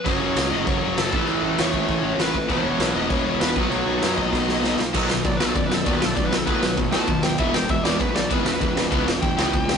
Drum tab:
CC |x-x-x-x-|x-x-x-x-|x-x-x-x-|x-x-----|
RD |--------|--------|--------|--------|
SD |--o---o-|--o---o-|--o---o-|--o-oooo|
BD |o---o--o|---oo--o|o---o--o|---oo---|

CC |x-------|--------|--------|--------|
RD |--x-x-x-|x-x-x-x-|x-x-x-x-|x-x-x-x-|
SD |-o-o-o-o|-o-o-o-o|-o-o-o-o|-o-o-o-o|
BD |o-o-o-o-|o-o-o-o-|o-o-o-o-|o-o-o-o-|